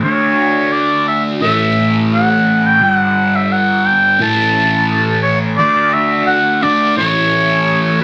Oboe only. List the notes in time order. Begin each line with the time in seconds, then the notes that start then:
0.04 C#5
0.72 D5
1.08 E5
1.42 E5
2.14 F#5
2.67 G5
2.83 F#5
3.36 E5
3.52 F#5
3.86 G5
4.23 A5
5.23 C#5
5.57 D5
5.93 E5
6.27 F#5
6.63 D5
6.97 C#5